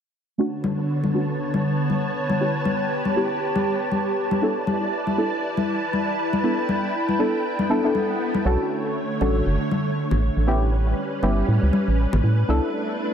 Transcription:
0.38 D3 A3 B3 C#4 D4 F#4 B4 C#5 A5
0.64 D3, high conga
1.04 high conga
1.14 A3 C#4 D4 F#4
1.20 A5
1.31 C#5
1.54 high conga
1.90 high conga
2.30 high conga
2.40 B3 C#4 E4 G4
2.56 G4
2.65 high conga
3.05 high conga
3.16 B3 C#4 E4 G4
3.56 high conga
3.92 high conga
4.31 high conga
4.41 B3 D4 E4 A4 B4 D5 A5
4.67 high conga
4.85 E4
5.07 high conga
5.17 B3 D4 E4 A4
5.29 D5
5.35 B5
5.57 high conga
5.93 high conga
6.33 high conga
6.43 B3 D4 E4 A4 G5
6.69 high conga
7.09 high conga
7.19 B3 D4 E4 A4
7.36 G5
7.45 swell
7.59 high conga
7.69 B3 D4 E4 A4
7.84 B3 D4 E4 A4
7.95 high conga
8.35 high conga
8.45 B1 D3 A3 C#4 D4 F#4 A4 C#5
9.21 A1 C#4 D4 F#4 A4, high conga
9.46 F#1
9.71 high conga
10.11 A1, low conga
10.37 A1
10.47 G3 B3 C#4 E4 G4 B4
11.22 G1 B3 C#4 E4 G4, high conga
11.48 A2
11.63 C#2
11.73 high conga
11.88 A1
12.13 A1, low conga
12.24 A2
12.48 C2 A3 B3 D4 E4 A4

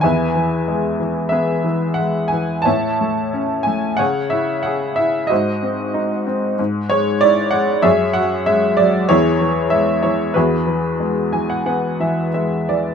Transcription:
0.01 E2 B4 E5 G#5
0.35 E3
0.68 G#3
1.00 E3
1.29 B3 G#4 B4 E5
1.64 E3
1.94 F#5
1.99 G#3
2.28 G#5
2.32 E3
2.62 C#5 E5 A5
2.66 A2
3.01 A3
3.33 C#4
3.63 A3 G#5
3.97 C#3 C#5 F#5
4.30 E4 E5
4.63 G#4 F#5
4.96 E4 E5
5.27 F#4 C5 D#5
5.32 G#2
5.63 C4
5.94 D#4
6.27 C4
6.59 G#2
6.90 G#3 C#5
7.21 E4 D5
7.51 G#3 F#5
7.82 F#2 G#4 C#5 E5
8.13 F#3 F#5
8.46 G#3 E5
8.77 F#3 D5
9.09 E2 E4 G#4 C#5
9.41 E3
9.70 G#3 E5
10.03 E3 C#5
10.34 E2 F#4 G#4 B4
10.67 E3
11.00 G#3
11.33 E3 G#5
11.50 F#5
11.66 B3 F#5
12.00 E3 E5
12.34 G#3 E5
12.69 E3 D5

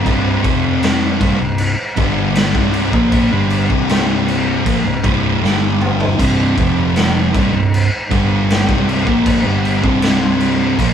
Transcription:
0.05 C1 C2 G2 C3, kick, crash
0.43 F1 F2 C3 F3, kick, crash
0.83 snare, crash
1.19 C1 C2 G2, kick, crash
1.39 C1 C2 G2
1.58 crash
1.97 G1 G2 D3 G3, kick, crash
2.35 snare, crash
2.54 C1 C2 G2 C3, kick
2.74 crash
2.93 A#1 A#2 F3 A#3, kick
3.12 kick, crash
3.31 G1 G2 D3 G3
3.50 crash
3.69 C1 C2 G2 C3, kick
3.89 snare, crash
4.28 crash
4.65 A#1 A#2 F3, kick, crash
4.84 C1 C2 G2
5.03 C1 C2 G2 C3, kick, crash
5.42 G1 G2 D3 G3, snare
5.81 mid tom
6.00 floor tom
6.18 C1 C2 G2 C3, kick, splash, crash
6.57 F1 F2 C3 F3, kick, crash
6.96 snare, crash
7.33 C1 C2 G2, kick, crash
7.53 C1 C2 G2
7.74 crash
8.10 G1 G2 D3 G3, kick, crash
8.50 snare, crash
8.68 C1 C2 G2 C3, kick
8.89 crash
9.07 A#1 A#2 F3 A#3, kick
9.26 kick, crash
9.45 G1 G2 D3 G3
9.65 crash
9.82 C1 C2 G2 C3, kick
10.02 snare, crash
10.40 crash
10.78 A#1 A#2 F3, kick, crash

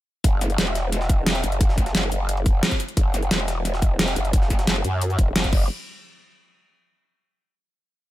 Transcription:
0.24 F#1, kick, closed hi-hat
0.41 snare, closed hi-hat, cabasa
0.50 closed hi-hat
0.58 E1, snare, closed hi-hat
0.67 snare
0.75 snare, closed hi-hat, cabasa
0.92 snare, closed hi-hat
1.01 snare
1.09 kick, closed hi-hat, cabasa
1.26 snare, closed hi-hat
1.35 snare, closed hi-hat, cabasa
1.44 F#1, closed hi-hat, cabasa
1.52 closed hi-hat
1.61 kick, closed hi-hat
1.69 snare
1.78 kick, snare, closed hi-hat, cabasa
1.86 snare, closed hi-hat
1.95 F#1, snare, closed hi-hat
2.03 snare
2.12 F#1, closed hi-hat, cabasa
2.29 closed hi-hat
2.37 closed hi-hat
2.46 kick, closed hi-hat, cabasa
2.63 snare, closed hi-hat
2.71 kick, closed hi-hat, cabasa
2.80 closed hi-hat, cabasa
2.88 closed hi-hat
2.97 F#1, kick, closed hi-hat
3.14 snare, closed hi-hat, cabasa
3.23 closed hi-hat
3.31 E1, snare, closed hi-hat
3.40 snare
3.48 snare, closed hi-hat, cabasa
3.65 snare, closed hi-hat
3.74 snare
3.82 kick, closed hi-hat, cabasa
3.99 snare, closed hi-hat
4.08 snare, closed hi-hat, cabasa
4.16 F#1, closed hi-hat, cabasa
4.25 closed hi-hat
4.33 kick, closed hi-hat
4.42 snare
4.50 kick, snare, closed hi-hat, cabasa
4.59 snare, closed hi-hat
4.67 F#1, snare, closed hi-hat
4.76 snare
4.84 F#2, closed hi-hat, cabasa
5.01 closed hi-hat
5.10 closed hi-hat, cabasa
5.19 E1, kick, closed hi-hat, cabasa
5.36 F#1, snare, closed hi-hat
5.44 kick, closed hi-hat, cabasa
5.53 F#1, kick, crash

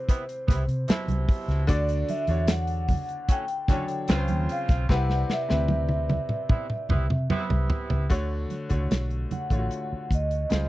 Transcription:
Already playing: C3 C4 E4 B4 C5
0.08 C3 B3 E4, kick, closed hi-hat
0.29 closed hi-hat
0.48 C2 C3 B3 E4, kick, snare, closed hi-hat, low conga
0.68 C3, closed hi-hat
0.88 B2 C3 E4, muted fingered electric bass stroke, snare, closed hi-hat, high conga
1.08 C2, closed hi-hat, high conga
1.29 kick, open hi-hat
1.48 C#2, snare, closed hi-hat
1.67 D2 D3 D4 F#4 D5, kick, closed hi-hat
1.89 closed hi-hat
2.09 E5, closed hi-hat, muted conga
2.27 E2 D3 D4 F#4 C#5, closed hi-hat
2.47 F#5, snare, closed hi-hat, high conga
2.67 closed hi-hat
2.88 kick, open hi-hat, muted conga, low conga
3.09 closed hi-hat
3.28 A2 F#3 C#4 G5, kick, closed hi-hat
3.48 closed hi-hat
3.68 A2 D3 F#3 C#4 D4 C#5, kick, snare, closed hi-hat, low conga
3.88 closed hi-hat
4.08 C#2 C#3 C4 C#4 F4 B4, snare, closed hi-hat, high conga
4.17 C5
4.28 D#2, closed hi-hat, high conga
4.49 F5, closed hi-hat
4.68 B1, kick, snare, closed hi-hat
4.88 C2 C3 C4 E4 B4 F#5, kick, snare
5.10 D5, snare
5.30 E5, snare, muted conga
5.49 D2 C3 C4 E4 B4, snare
5.68 high tom, high conga
5.89 high tom
6.09 high tom, muted conga, low conga
6.29 mid tom
6.49 C3 B3 E4, kick, mid tom
6.70 mid tom
6.89 C2 C3 B3 E4, mid tom, low conga
7.10 C3, mid tom
7.30 C3 B3 E4, muted fingered electric bass stroke, mid tom, high conga
7.50 C2, floor tom, high conga
7.70 floor tom
7.90 C#2, floor tom
8.10 D2 D3 A3 F#4 C#5, kick, closed hi-hat, muted conga
8.50 closed hi-hat, muted conga
8.69 C#2 D3 A3 F#4 C#5, kick, closed hi-hat
8.91 B1, snare, closed hi-hat, high conga
9.10 closed hi-hat
9.31 F#5, closed hi-hat, muted conga, low conga
9.50 A1 D3 A3 F4 C#5, kick, closed hi-hat
9.59 F#4
9.71 closed hi-hat
9.92 muted fingered electric bass stroke
10.11 D2 D#5, kick, closed hi-hat
10.31 closed hi-hat
10.50 C#2 C#3 G#3 F4 C5, snare, closed hi-hat, high conga

